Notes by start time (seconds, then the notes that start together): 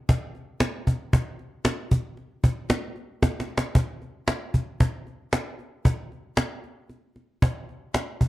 0.09 cajon bass
0.35 cajon slap
0.60 cajon slap
0.87 cajon bass
1.12 cajon bass, cajon slap
1.39 cajon slap
1.65 cajon slap
1.91 cajon bass, cajon slap
2.17 cajon slap
2.44 cajon bass
2.70 cajon slap
2.96 cajon slap
3.22 cajon bass, cajon slap
3.40 cajon slap
3.49 cajon slap
3.57 cajon slap
3.75 cajon bass
4.02 cajon slap
4.28 cajon slap
4.54 cajon bass, cajon slap
4.80 cajon bass
5.07 cajon slap
5.33 cajon slap
5.59 cajon slap
5.85 cajon bass
6.12 cajon slap
6.37 cajon slap
6.64 cajon slap
6.89 cajon slap
7.16 cajon slap
7.42 cajon bass
7.69 cajon slap
7.94 cajon slap
8.21 cajon bass